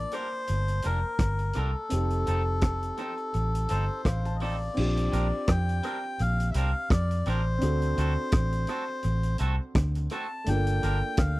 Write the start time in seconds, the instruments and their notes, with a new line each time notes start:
Already playing: grand piano A#3 D4 F4 A5, melodica D5
0.11 clean electric guitar G3 D4 F4 A#4, melodica C5, closed hi-hat
0.32 muted clean electric guitar stroke
0.47 fingered electric bass G1, closed hi-hat
0.68 closed hi-hat
0.82 fingered electric bass F1, clean electric guitar G3 D4 F4 A#4, melodica A#4, closed hi-hat
1.19 fingered electric bass G1, kick, cross-stick, closed hi-hat
1.39 muted clean electric guitar stroke, closed hi-hat
1.53 fingered electric bass C2, clean electric guitar G3 D4 F4 A#4, melodica A4, closed hi-hat
1.89 fingered electric bass F1, grand piano C4 D#4, closed hi-hat
1.93 grand piano G4 A4
2.10 closed hi-hat
2.27 fingered electric bass F1, clean electric guitar F3 C4 D#4 A4, closed hi-hat
2.61 kick, cross-stick, closed hi-hat
2.83 closed hi-hat
2.97 clean electric guitar F3 C4 D#4 A4, closed hi-hat
3.18 muted clean electric guitar stroke, closed hi-hat
3.34 fingered electric bass A1, closed hi-hat
3.55 closed hi-hat
3.69 fingered electric bass G1, clean electric guitar F3 C4 D#4 A4, melodica C5, closed hi-hat
4.05 fingered electric bass A1, grand piano F5, kick, cross-stick, closed hi-hat
4.25 grand piano A5, muted clean electric guitar stroke, closed hi-hat
4.36 melodica D#5
4.40 clean electric guitar F3 C4 D#4 A4, melodica D5, open hi-hat
4.74 fingered electric bass A#1, grand piano C4 D4 F4, crash
4.80 grand piano G4
4.97 closed hi-hat
5.12 fingered electric bass A#1, clean electric guitar G3 C4 D4 A#4, closed hi-hat
5.47 fingered electric bass F2, melodica G5, kick, cross-stick, closed hi-hat
5.69 closed hi-hat
5.83 clean electric guitar G3 C4 D4 A#4, closed hi-hat
6.04 muted clean electric guitar stroke
6.19 fingered electric bass A#1, melodica F5, closed hi-hat
6.40 closed hi-hat
6.51 melodica E5, closed hi-hat
6.55 fingered electric bass C2, clean electric guitar G3 C4 D4 A#4, melodica F5
6.90 fingered electric bass F2, melodica D5, kick, cross-stick, closed hi-hat
7.11 muted clean electric guitar stroke, closed hi-hat
7.26 fingered electric bass A1, clean electric guitar G3 C4 D4 A#4, melodica C5, closed hi-hat
7.58 grand piano C4 D4, closed hi-hat
7.62 fingered electric bass D2, grand piano F#4 A4
7.82 closed hi-hat
7.98 fingered electric bass D2, clean electric guitar A3 C4 F#4 A4, closed hi-hat
8.32 fingered electric bass A1, kick, cross-stick, closed hi-hat
8.52 closed hi-hat
8.67 clean electric guitar A3 C4 F#4 A4, closed hi-hat
8.88 muted clean electric guitar stroke
9.03 fingered electric bass A1, closed hi-hat
9.23 closed hi-hat
9.38 fingered electric bass C2, clean electric guitar A3 C4 F#4 A4, closed hi-hat
9.75 fingered electric bass D2, kick, cross-stick, closed hi-hat
9.95 muted clean electric guitar stroke, closed hi-hat
10.10 clean electric guitar A3 C4 F#4 A4, melodica A5, closed hi-hat
10.44 fingered electric bass G1, grand piano A3 D4, melodica G5, closed hi-hat
10.49 grand piano A#3 F4 A4
10.67 closed hi-hat
10.82 fingered electric bass G1, clean electric guitar G3 D4 F4 A#4, closed hi-hat
11.17 fingered electric bass D2, melodica F5, kick, cross-stick, closed hi-hat